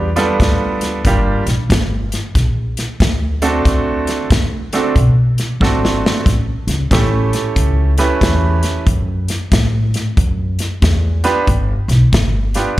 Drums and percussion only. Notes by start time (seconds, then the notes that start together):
0.16 snare, closed hi-hat
0.40 kick, snare, closed hi-hat
0.81 snare, closed hi-hat
1.05 kick, snare, closed hi-hat
1.47 snare, closed hi-hat
1.70 kick, snare, closed hi-hat
2.12 snare, closed hi-hat
2.35 kick, snare, closed hi-hat
2.77 snare, closed hi-hat
3.00 kick, snare, closed hi-hat
3.42 snare, closed hi-hat
3.65 kick, snare, closed hi-hat
4.07 snare, closed hi-hat
4.30 kick, snare, closed hi-hat
4.73 snare, closed hi-hat
4.96 kick, closed hi-hat
5.38 snare, closed hi-hat
5.61 kick, snare
5.85 snare
6.06 snare
6.26 kick, snare, closed hi-hat
6.68 snare, closed hi-hat
6.91 kick, snare, closed hi-hat
7.33 snare, closed hi-hat
7.56 kick, closed hi-hat
7.98 snare, closed hi-hat
8.21 kick, snare, closed hi-hat
8.63 snare, closed hi-hat
8.87 kick, closed hi-hat
9.28 snare, closed hi-hat
9.52 kick, snare, closed hi-hat
9.94 snare, closed hi-hat
10.17 kick, closed hi-hat
10.59 snare, closed hi-hat
10.82 kick, snare, closed hi-hat
11.24 snare, closed hi-hat
11.47 kick, closed hi-hat
11.89 snare, closed hi-hat
12.13 kick, snare, closed hi-hat
12.54 snare, closed hi-hat